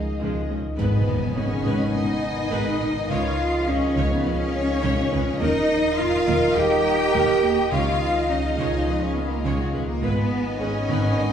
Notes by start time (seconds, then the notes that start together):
Already playing: C#2 D#3 G#3 C#4 D#4 G#4 D#5 F5
0.21 C#2 C#3 F3 G#3
0.50 C#2 F3 G#3 C#4
0.78 G#1 D#3 G#3 B3 D#4 B4 D#5 G#5, impact
1.36 G#1 C#4 G#4 B4 C#5
1.65 G#1 G#3 B4
1.93 G#1 B3 D#4 A#4 D#5
2.52 G#1 G#3 B4
2.80 G#1 D#4 A#4
3.09 C#2 C#3 F3 G#3 F4 G#4 C#5 F5
3.67 C#2 C#4 C#5
3.96 C#2 C#3 C#5
4.11 B3 B4
4.25 C#2 F3 C#4 B4 C#5
4.83 C#2 C#3 C#5
5.12 C#2 G#3 B4
5.39 D#1 D#2 D#3 A#3 D#4 A#4 D#5
5.98 D#2 D#4 F4 A#4 F5
6.27 D#2 D#3 A#4
6.55 D#2 G3 G4 G#4 G5
7.13 D#2 D#3 A#4
7.42 D#2 A#3 G#4
7.71 C#2 C#3 F3 G#3 F4 G#4 C#5 F5
8.28 C#2 C#4 D#4 C#5 D#5
8.58 C#2 C#3 C#5
8.87 C#2 F3 B4
9.00 C#4 C#5
9.15 B3 B4
9.30 A#3 A#4
9.43 C#2 C#3 G#3 G#4 C#5
9.59 F#3 F#4
9.72 C#2 G#3 G#4 B4
9.87 A#3 A#4
10.01 G#1 D#3 G#3 B3 D#4 B4 D#5 G#5
10.59 G#1 C#4 G#4 B4 C#5
10.89 G#1 G#3 B4
11.17 G#1 B3 D#4 A#4 D#5